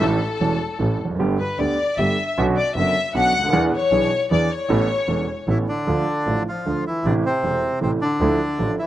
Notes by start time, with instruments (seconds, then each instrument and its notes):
0.01 grand piano A1 A2 E3 A3 C#4 A4, double bass A1, violin section A4
0.40 grand piano E1 E2 E3 A3 C#4 A4, double bass E1
0.79 double bass A1, grand piano A1 A2 E3 A3 C#4 A4
1.00 double bass F1
1.05 grand piano E2
1.10 grand piano F2
1.15 grand piano F#2
1.19 double bass G1, grand piano G1 G2 D3 A3 B3 G4
1.39 violin section B4
1.58 double bass D2, grand piano D2 D3 A3 B3 G4, violin section D5
1.98 double bass G1, grand piano G1 G2 D3 A3 B3 G4, violin section E5
2.38 double bass B1, grand piano B1 B2 D3 B3 C#4 F#4
2.57 violin section D5
2.76 double bass F#1, grand piano F#1 F#2 D3 B3 C#4 F#4, violin section E5
3.14 double bass B1, grand piano B1 B2 D3 B3 C#4 F#4, violin section F#5
3.35 double bass D2
3.39 grand piano C#2
3.43 grand piano D2
3.49 grand piano D#2
3.53 grand piano E2 E3 B3 D4 G#4, double bass E2
3.76 violin section C#5
3.91 double bass B1, grand piano B1 B2 E3 B3 D4 G#4
4.31 double bass E2, grand piano E2 E3 B3 D4 G#4, violin section D5
4.52 violin section C#5
4.70 double bass A1, grand piano A1 A2 E3 B3 C#4 A4
5.08 grand piano E1 E2 E3 B3 C#4 A4, double bass E1
5.48 grand piano A1 A2 E3 B3 C#4 A4, double bass A1, bandoneon E3 E4
5.69 bandoneon D3 D4
5.87 double bass D2, grand piano D2 D3 F3 A3 F4
6.26 double bass A1, grand piano A1 A2 D3 F3 A3 F4
6.49 bandoneon F3 F4
6.66 double bass D2, grand piano D2 D3 F3 A3 F4
6.87 bandoneon E3 E4
7.04 double bass A1, grand piano A1 A2 C3 E3 A3 E4, bandoneon D3 D4
7.26 bandoneon C3 C4
7.43 double bass E1, grand piano E1 E2 C3 E3 A3 E4
7.81 grand piano A1 A2 C3 E3 A3 E4, double bass A1, bandoneon C4
7.85 bandoneon C3
8.01 bandoneon D3 D4
8.20 double bass D2, grand piano D2 D3 F3 A3 E4
8.59 grand piano A1 A2 D3 F3 A3 E4, double bass A1
8.79 bandoneon E3 E4